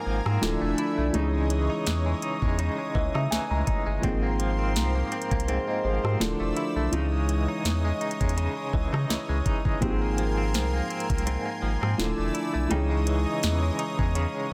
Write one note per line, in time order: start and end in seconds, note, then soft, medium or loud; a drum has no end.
0.00 0.50 G#2 medium
0.00 0.37 F3 medium
0.00 0.37 A#3 medium
0.00 0.50 A#3 medium
0.00 0.24 C4 medium
0.00 0.38 C4 medium
0.00 0.38 D#4 medium
0.00 0.42 G#4 medium
0.00 0.40 A#4 medium
0.00 1.12 G#5 medium
0.00 0.40 A#5 medium
0.00 0.74 D#6 medium
0.06 0.21 G#1 loud
0.06 0.50 F3 medium
0.26 0.38 G#2 loud
0.26 0.50 C4 medium
0.26 cross-stick loud
0.41 0.57 D1 loud
0.41 1.14 D3 medium
0.41 1.14 F3 medium
0.41 1.14 A3 medium
0.41 1.13 D4 medium
0.41 1.14 D4 medium
0.41 1.14 E4 medium
0.41 1.15 A4 medium
0.41 1.14 E5 medium
0.41 snare loud
0.62 0.74 E1 medium
0.62 0.97 A3 medium
0.78 1.14 E4 medium
0.78 1.47 B5 medium
0.78 closed hi-hat medium
0.98 1.10 B1 medium
0.98 1.22 A3 medium
1.13 1.69 C#2 loud
1.13 2.58 C#3 medium
1.13 3.99 E3 medium
1.13 3.99 G#3 medium
1.13 4.00 C#4 medium
1.13 1.69 D#4 medium
1.13 4.00 D#4 medium
1.13 4.00 G#4 medium
1.13 4.01 C#5 medium
1.13 4.01 D#5 medium
1.13 4.01 D#6 medium
1.13 closed hi-hat medium
1.34 2.05 G#3 medium
1.50 1.85 E3 medium
1.50 closed hi-hat medium
1.70 2.22 D#4 medium
1.87 2.14 E2 loud
1.87 2.94 E3 medium
1.87 snare loud
1.87 closed hi-hat medium
2.06 2.42 G#3 medium
2.22 2.59 D#4 medium
2.22 closed hi-hat medium
2.42 2.70 E2 medium
2.42 2.78 G#3 medium
2.42 kick loud
2.59 4.11 C#3 medium
2.59 3.14 D#4 medium
2.59 closed hi-hat medium
2.79 3.50 G#3 medium
2.95 3.10 C#2 medium
2.95 3.30 E3 medium
2.95 3.13 D#5 medium
2.95 kick medium
3.14 3.27 C#3 loud
3.14 3.67 D#4 medium
3.14 3.30 E5 medium
3.14 cross-stick loud
3.31 3.39 C#2 soft
3.31 4.11 E3 medium
3.31 3.49 G#5 medium
3.31 snare loud
3.51 3.63 C#2 loud
3.51 3.86 G#3 medium
3.51 4.00 A#5 medium
3.67 4.04 D#4 medium
3.67 kick medium
3.67 closed hi-hat medium
3.86 3.99 G1 medium
3.86 4.22 G#3 medium
4.01 4.77 G#1 loud
4.01 5.47 G#2 medium
4.01 6.15 F3 medium
4.01 6.16 A#3 medium
4.01 6.16 C4 medium
4.01 4.58 C4 medium
4.01 6.17 D#4 medium
4.01 5.46 G#4 medium
4.01 6.18 A#4 medium
4.01 6.90 C5 medium
4.01 6.18 C6 medium
4.01 kick loud
4.01 closed hi-hat medium
4.23 4.94 A#3 medium
4.39 4.75 F3 medium
4.39 closed hi-hat medium
4.59 5.11 C4 medium
4.75 5.03 C2 loud
4.75 5.83 F3 medium
4.75 snare loud
4.75 closed hi-hat medium
4.95 5.30 A#3 medium
5.12 5.47 C4 medium
5.12 closed hi-hat soft
5.22 closed hi-hat medium
5.31 5.59 C2 loud
5.31 5.66 A#3 medium
5.31 kick loud
5.31 closed hi-hat medium
5.40 closed hi-hat medium
5.48 6.28 G#2 medium
5.48 6.03 C4 medium
5.48 5.67 G#4 medium
5.48 5.66 C5 medium
5.48 closed hi-hat medium
5.68 6.28 A#3 medium
5.68 5.83 C5 medium
5.68 5.83 D#5 medium
5.84 5.99 G#1 loud
5.84 6.28 F3 medium
5.84 6.03 G#4 medium
5.84 6.03 C5 medium
6.04 6.16 G#2 loud
6.04 6.28 C4 medium
6.04 6.38 G4 medium
6.04 6.38 A#4 medium
6.04 cross-stick loud
6.20 6.35 D1 loud
6.20 6.93 D3 medium
6.20 6.92 F3 medium
6.20 6.93 A3 medium
6.20 6.93 D4 medium
6.20 6.93 E4 medium
6.20 6.93 A4 medium
6.20 6.92 D5 medium
6.20 6.92 E6 medium
6.20 snare loud
6.40 6.52 E1 medium
6.40 6.75 A3 medium
6.57 6.93 E4 medium
6.57 closed hi-hat medium
6.76 6.88 B1 medium
6.76 7.01 A3 medium
6.91 7.47 C#2 loud
6.91 8.36 C#3 medium
6.91 9.77 E3 medium
6.91 9.77 G#3 medium
6.91 9.78 C#4 medium
6.91 7.48 D#4 medium
6.91 9.78 D#4 medium
6.91 9.79 G#4 medium
6.91 9.79 C#5 medium
6.91 9.79 D#5 medium
6.91 9.79 D#6 medium
6.91 closed hi-hat medium
7.12 7.84 G#3 medium
7.29 7.64 E3 medium
7.29 closed hi-hat medium
7.48 8.00 D#4 medium
7.65 7.92 E2 loud
7.65 8.72 E3 medium
7.65 snare loud
7.65 closed hi-hat medium
7.85 8.20 G#3 medium
8.01 8.37 D#4 medium
8.01 closed hi-hat soft
8.11 closed hi-hat medium
8.20 8.48 E2 loud
8.20 8.56 G#3 medium
8.20 kick medium
8.20 closed hi-hat medium
8.29 closed hi-hat medium
8.37 9.90 C#3 medium
8.37 8.92 D#4 medium
8.37 closed hi-hat medium
8.57 9.29 G#3 medium
8.73 8.88 C#2 medium
8.73 9.08 E3 medium
8.73 kick medium
8.93 9.05 C#3 loud
8.93 9.45 D#4 medium
8.93 cross-stick loud
9.09 9.17 C#2 soft
9.09 9.90 E3 medium
9.09 snare loud
9.29 9.42 C#2 loud
9.29 9.65 G#3 medium
9.46 9.82 D#4 medium
9.46 kick medium
9.46 closed hi-hat medium
9.65 9.78 G1 medium
9.65 10.01 G#3 medium
9.65 kick loud
9.80 10.56 G#1 loud
9.80 11.25 G#2 medium
9.80 11.94 F3 medium
9.80 11.94 A#3 medium
9.80 11.95 C4 medium
9.80 10.36 C4 medium
9.80 11.95 D#4 medium
9.80 9.90 G4 medium
9.80 11.96 A#4 medium
9.80 12.68 G#5 medium
9.80 11.96 C6 medium
9.80 kick loud
9.80 closed hi-hat medium
9.90 11.99 G#4 medium
10.02 10.72 A#3 medium
10.18 10.54 F3 medium
10.18 closed hi-hat medium
10.38 10.89 C4 medium
10.54 10.81 C2 loud
10.54 11.61 F3 medium
10.54 snare loud
10.54 closed hi-hat medium
10.74 11.08 A#3 medium
10.90 11.26 C4 medium
10.90 closed hi-hat soft
11.00 closed hi-hat soft
11.10 11.37 C2 medium
11.10 11.45 A#3 medium
11.10 kick loud
11.10 closed hi-hat medium
11.18 closed hi-hat medium
11.26 12.06 G#2 medium
11.26 11.80 C4 medium
11.26 closed hi-hat medium
11.46 12.06 A#3 medium
11.62 11.77 G#1 loud
11.62 12.06 F3 medium
11.82 11.95 G#2 loud
11.82 12.06 C4 medium
11.82 cross-stick loud
11.98 12.13 D1 loud
11.98 12.70 D3 medium
11.98 12.71 F3 medium
11.98 12.71 A3 medium
11.98 12.71 D4 medium
11.98 12.71 E4 medium
11.98 12.71 A4 medium
11.98 12.70 D5 medium
11.98 12.70 E6 medium
11.98 snare loud
12.18 12.31 E1 loud
12.18 12.53 A3 medium
12.34 12.71 E4 medium
12.34 closed hi-hat medium
12.54 12.67 B1 medium
12.54 12.78 A3 medium
12.69 13.26 C#2 loud
12.69 14.14 C#3 medium
12.69 14.53 E3 medium
12.69 14.53 G#3 medium
12.69 14.53 C#4 medium
12.69 13.26 D#4 medium
12.69 14.53 D#4 medium
12.69 14.53 G#4 medium
12.69 14.53 C#5 medium
12.69 14.53 D#5 medium
12.69 14.53 G5 medium
12.69 14.53 D#6 medium
12.69 closed hi-hat medium
12.90 13.62 G#3 medium
13.07 13.42 E3 medium
13.07 closed hi-hat medium
13.26 13.79 D#4 medium
13.43 13.71 E2 loud
13.43 14.50 E3 medium
13.43 snare loud
13.43 closed hi-hat medium
13.63 13.98 G#3 medium
13.79 14.16 D#4 medium
13.79 closed hi-hat medium
13.99 14.26 E2 loud
13.99 14.34 G#3 medium
13.99 kick medium
14.15 14.53 C#3 medium
14.15 14.53 D#4 medium
14.15 closed hi-hat medium
14.35 14.53 G#3 medium